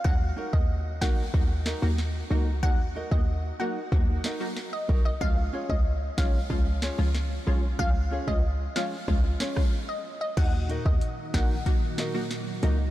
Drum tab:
CC |----------------|----------------|----------------|----------------|
HH |----------------|----------------|----------------|----------------|
SD |------o---o-o---|----------o-o---|------o---o-o---|------o---or----|
BD |o--o--o-o-------|o--o----o-----o-|o--o--o-o-------|o--o----o--o----|

CC |x---------------|
HH |x-x-x-x-x-x-x-x-|
SD |------o---o-o---|
BD |o--o--o-o-------|